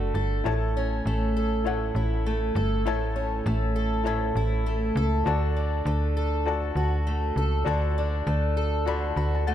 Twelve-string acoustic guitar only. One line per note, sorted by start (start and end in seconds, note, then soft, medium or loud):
0.00 0.52 D3 medium
0.00 1.06 A3 medium
0.00 0.53 D4 medium
0.00 0.53 F#4 medium
0.00 0.14 A4 medium
0.15 1.36 A4 medium
0.46 1.65 A2 medium
0.77 3.15 C#4 medium
1.07 2.26 A3 medium
1.37 2.56 A4 medium
1.67 2.85 A2 medium
1.96 4.35 E4 medium
2.26 3.46 A3 medium
2.56 3.75 A4 medium
2.87 4.05 A2 medium
3.16 5.33 C#4 medium
3.46 4.66 A3 medium
3.76 4.97 A4 medium
4.07 5.34 A2 medium
4.37 5.34 E4 medium
4.66 5.86 A3 medium
4.97 6.16 A4 medium
5.27 6.47 D3 medium
5.57 7.97 D4 medium
5.86 7.06 A3 medium
6.17 7.37 A4 medium
6.77 9.16 F#4 medium
7.07 8.27 A3 medium
7.37 8.57 A4 medium
7.67 8.86 D3 medium
7.98 9.54 D4 medium
8.27 9.47 A3 medium
8.57 9.54 A4 medium
8.87 9.54 D3 medium
9.17 9.54 F#4 medium
9.47 9.54 A3 medium